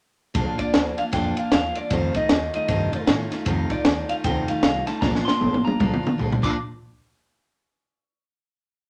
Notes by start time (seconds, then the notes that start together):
0.34 A#1 A#2 F3 A#3 D4 F4, kick, ride
0.58 A#3 D4 F4 D5, muted upright bass stroke, kick, ride
0.73 D2 F3 A#3 D4 F4, snare, ride
0.97 A#3 D4 F4 F5, muted upright bass stroke, ride
1.12 F2 A#2 F3 A#3 D4 F4 G5, kick, snare, ride
1.36 A#3 D4 F4 F5, ride
1.51 D#2 F3 A#3 D4 F4 F5, snare, ride
1.75 A#3 D4 F4 D5, muted upright bass stroke, ride
1.90 F2 C3 D#3 A3 D#4 F4 C5, kick, ride
2.14 D#3 A3 D#4 F4 D#5, muted upright bass stroke, kick, ride
2.29 D#2 D#3 A3 D#4 F4, snare, ride
2.53 D#3 A3 D#4 F4 D#5, muted upright bass stroke, ride
2.68 F2 G2 C3 D#3 A3 D#4 F4, kick, ride
2.92 D#3 A3 D#4 F4, muted upright bass stroke, ride
3.06 A2 D#3 A3 D#4 F4, snare, ride
3.30 D#3 A3 D#4 F4, muted upright bass stroke, snare, ride
3.45 F2 C3 D#3 A3 D#4 F4, kick, ride
3.70 D#3 A3 D#4 F4 D5, kick, ride
3.85 D#2 D#3 A3 D#4 F4, snare, ride
4.09 D#3 A3 D#4 F4 F5, muted upright bass stroke, ride
4.24 D2 F2 C3 D#3 A3 D#4 F4 G5, kick, ride
4.48 D#3 A3 D#4 F4 F5, muted upright bass stroke, ride
4.63 C2 D#3 D#4 F4 F5, snare, ride
4.86 D#3 A3 D#4 F4 A5, snare, ride
5.01 A#1 A#2 F3 A#3 D4 F4 A#5, kick, snare
5.15 snare
5.25 A#3 D4 F4 C6, muted upright bass stroke, snare
5.40 A1 F3 A#3 D4 F4, high tom
5.54 high tom
5.64 A#3 D4 F4 A#5, muted upright bass stroke, mid tom
5.79 A#1 A#2 F3 A#3 D4 F4, kick, mid tom
5.94 mid tom
6.03 A#3 D4 F4, muted upright bass stroke, mid tom
6.18 C2 F3 A#3 D4 F4, floor tom
6.32 floor tom
6.42 A#2 F3 A#3 D4 F4 D6, kick, crash